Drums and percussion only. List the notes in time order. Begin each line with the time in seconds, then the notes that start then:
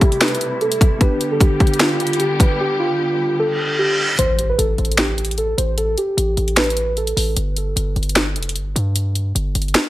0.01 kick, closed hi-hat
0.12 closed hi-hat
0.21 finger snap, snare, closed hi-hat
0.28 closed hi-hat
0.35 closed hi-hat
0.41 closed hi-hat
0.61 closed hi-hat
0.72 closed hi-hat
0.81 kick, closed hi-hat
1.01 kick, closed hi-hat
1.21 closed hi-hat
1.41 kick, closed hi-hat
1.60 kick, closed hi-hat
1.67 closed hi-hat
1.74 closed hi-hat
1.80 finger snap, snare, closed hi-hat
2.00 closed hi-hat
2.07 closed hi-hat
2.13 closed hi-hat
2.20 closed hi-hat
2.40 kick, closed hi-hat
4.19 closed hi-hat
4.39 closed hi-hat
4.59 closed hi-hat
4.78 closed hi-hat
4.85 closed hi-hat
4.92 closed hi-hat
4.98 finger snap, snare, closed hi-hat
5.18 closed hi-hat
5.25 closed hi-hat
5.31 closed hi-hat
5.38 closed hi-hat
5.58 closed hi-hat
5.78 closed hi-hat
5.98 closed hi-hat
6.18 closed hi-hat
6.37 closed hi-hat
6.48 closed hi-hat
6.57 finger snap, snare, closed hi-hat
6.64 closed hi-hat
6.70 closed hi-hat
6.77 closed hi-hat
6.97 closed hi-hat
7.07 closed hi-hat
7.17 open hi-hat
7.37 closed hi-hat
7.57 closed hi-hat
7.77 closed hi-hat
7.96 closed hi-hat
8.03 closed hi-hat
8.09 closed hi-hat
8.16 finger snap, snare, closed hi-hat
8.36 closed hi-hat
8.43 closed hi-hat
8.49 closed hi-hat
8.56 closed hi-hat
8.76 closed hi-hat
8.96 closed hi-hat
9.15 closed hi-hat
9.36 closed hi-hat
9.55 closed hi-hat
9.62 closed hi-hat
9.68 closed hi-hat
9.74 finger snap, snare, closed hi-hat